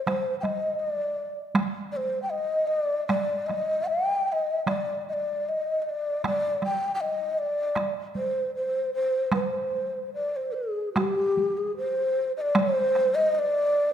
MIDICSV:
0, 0, Header, 1, 3, 480
1, 0, Start_track
1, 0, Tempo, 746269
1, 45, Time_signature, 2, 2, 24, 8
1, 1484, Tempo, 789474
1, 3404, Tempo, 765306
1, 5324, Tempo, 804290
1, 7724, Tempo, 771208
1, 8587, End_track
2, 0, Start_track
2, 0, Title_t, "Shakuhachi"
2, 0, Program_c, 0, 77
2, 34, Note_on_c, 0, 72, 73
2, 227, Note_off_c, 0, 72, 0
2, 261, Note_on_c, 0, 79, 54
2, 280, Note_on_c, 0, 75, 74
2, 290, Note_off_c, 0, 79, 0
2, 511, Note_on_c, 0, 74, 68
2, 521, Note_off_c, 0, 75, 0
2, 872, Note_off_c, 0, 74, 0
2, 1234, Note_on_c, 0, 74, 68
2, 1264, Note_on_c, 0, 72, 74
2, 1270, Note_off_c, 0, 74, 0
2, 1424, Note_off_c, 0, 72, 0
2, 1431, Note_on_c, 0, 79, 59
2, 1480, Note_on_c, 0, 75, 80
2, 1489, Note_off_c, 0, 79, 0
2, 1705, Note_off_c, 0, 75, 0
2, 1705, Note_on_c, 0, 75, 81
2, 1772, Note_off_c, 0, 75, 0
2, 1772, Note_on_c, 0, 74, 81
2, 1950, Note_off_c, 0, 74, 0
2, 1954, Note_on_c, 0, 74, 72
2, 2187, Note_on_c, 0, 75, 71
2, 2196, Note_off_c, 0, 74, 0
2, 2438, Note_on_c, 0, 79, 80
2, 2447, Note_off_c, 0, 75, 0
2, 2684, Note_off_c, 0, 79, 0
2, 2684, Note_on_c, 0, 79, 68
2, 2709, Note_on_c, 0, 75, 73
2, 2715, Note_off_c, 0, 79, 0
2, 2913, Note_off_c, 0, 75, 0
2, 2917, Note_on_c, 0, 74, 66
2, 3143, Note_off_c, 0, 74, 0
2, 3175, Note_on_c, 0, 75, 62
2, 3204, Note_on_c, 0, 74, 67
2, 3210, Note_off_c, 0, 75, 0
2, 3419, Note_on_c, 0, 75, 74
2, 3428, Note_off_c, 0, 74, 0
2, 3626, Note_off_c, 0, 75, 0
2, 3626, Note_on_c, 0, 75, 50
2, 3672, Note_on_c, 0, 74, 74
2, 3682, Note_off_c, 0, 75, 0
2, 3901, Note_off_c, 0, 74, 0
2, 3905, Note_on_c, 0, 74, 79
2, 4119, Note_off_c, 0, 74, 0
2, 4144, Note_on_c, 0, 79, 76
2, 4318, Note_off_c, 0, 79, 0
2, 4333, Note_on_c, 0, 79, 58
2, 4372, Note_on_c, 0, 75, 79
2, 4381, Note_off_c, 0, 79, 0
2, 4607, Note_on_c, 0, 74, 84
2, 4617, Note_off_c, 0, 75, 0
2, 4919, Note_off_c, 0, 74, 0
2, 5095, Note_on_c, 0, 72, 69
2, 5312, Note_off_c, 0, 72, 0
2, 5345, Note_on_c, 0, 72, 70
2, 5550, Note_off_c, 0, 72, 0
2, 5572, Note_on_c, 0, 72, 67
2, 5784, Note_off_c, 0, 72, 0
2, 5807, Note_on_c, 0, 72, 62
2, 6262, Note_off_c, 0, 72, 0
2, 6288, Note_on_c, 0, 74, 60
2, 6419, Note_on_c, 0, 72, 57
2, 6428, Note_off_c, 0, 74, 0
2, 6527, Note_on_c, 0, 68, 56
2, 6536, Note_off_c, 0, 72, 0
2, 6761, Note_off_c, 0, 68, 0
2, 6764, Note_on_c, 0, 67, 69
2, 7142, Note_on_c, 0, 68, 71
2, 7151, Note_off_c, 0, 67, 0
2, 7254, Note_off_c, 0, 68, 0
2, 7261, Note_on_c, 0, 72, 75
2, 7587, Note_off_c, 0, 72, 0
2, 7619, Note_on_c, 0, 75, 77
2, 7644, Note_on_c, 0, 74, 83
2, 7649, Note_off_c, 0, 75, 0
2, 7751, Note_on_c, 0, 72, 90
2, 7761, Note_off_c, 0, 74, 0
2, 8098, Note_on_c, 0, 75, 98
2, 8107, Note_off_c, 0, 72, 0
2, 8224, Note_off_c, 0, 75, 0
2, 8224, Note_on_c, 0, 75, 91
2, 8245, Note_on_c, 0, 74, 99
2, 8252, Note_off_c, 0, 75, 0
2, 8570, Note_off_c, 0, 74, 0
2, 8587, End_track
3, 0, Start_track
3, 0, Title_t, "Taiko and cinematic ensemble drums"
3, 47, Note_on_c, 9, 37, 49
3, 47, Note_on_c, 9, 48, 49
3, 111, Note_off_c, 9, 37, 0
3, 111, Note_off_c, 9, 48, 0
3, 285, Note_on_c, 9, 37, 33
3, 285, Note_on_c, 9, 48, 35
3, 349, Note_off_c, 9, 37, 0
3, 349, Note_off_c, 9, 48, 0
3, 997, Note_on_c, 9, 37, 58
3, 997, Note_on_c, 9, 48, 56
3, 1061, Note_off_c, 9, 37, 0
3, 1061, Note_off_c, 9, 48, 0
3, 1961, Note_on_c, 9, 37, 48
3, 1961, Note_on_c, 9, 48, 45
3, 2022, Note_off_c, 9, 37, 0
3, 2022, Note_off_c, 9, 48, 0
3, 2205, Note_on_c, 9, 37, 31
3, 2205, Note_on_c, 9, 48, 33
3, 2266, Note_off_c, 9, 37, 0
3, 2266, Note_off_c, 9, 48, 0
3, 2921, Note_on_c, 9, 37, 49
3, 2921, Note_on_c, 9, 48, 48
3, 2982, Note_off_c, 9, 37, 0
3, 2982, Note_off_c, 9, 48, 0
3, 3892, Note_on_c, 9, 37, 49
3, 3892, Note_on_c, 9, 48, 53
3, 3954, Note_off_c, 9, 37, 0
3, 3954, Note_off_c, 9, 48, 0
3, 4128, Note_on_c, 9, 37, 34
3, 4128, Note_on_c, 9, 48, 36
3, 4191, Note_off_c, 9, 37, 0
3, 4191, Note_off_c, 9, 48, 0
3, 4843, Note_on_c, 9, 37, 48
3, 4843, Note_on_c, 9, 48, 48
3, 4906, Note_off_c, 9, 37, 0
3, 4906, Note_off_c, 9, 48, 0
3, 5088, Note_on_c, 9, 48, 34
3, 5151, Note_off_c, 9, 48, 0
3, 5795, Note_on_c, 9, 37, 51
3, 5795, Note_on_c, 9, 48, 54
3, 5855, Note_off_c, 9, 37, 0
3, 5855, Note_off_c, 9, 48, 0
3, 6775, Note_on_c, 9, 37, 51
3, 6775, Note_on_c, 9, 48, 54
3, 6834, Note_off_c, 9, 37, 0
3, 6834, Note_off_c, 9, 48, 0
3, 7022, Note_on_c, 9, 48, 41
3, 7081, Note_off_c, 9, 48, 0
3, 7725, Note_on_c, 9, 37, 59
3, 7725, Note_on_c, 9, 48, 57
3, 7787, Note_off_c, 9, 37, 0
3, 7787, Note_off_c, 9, 48, 0
3, 7976, Note_on_c, 9, 37, 36
3, 8038, Note_off_c, 9, 37, 0
3, 8587, End_track
0, 0, End_of_file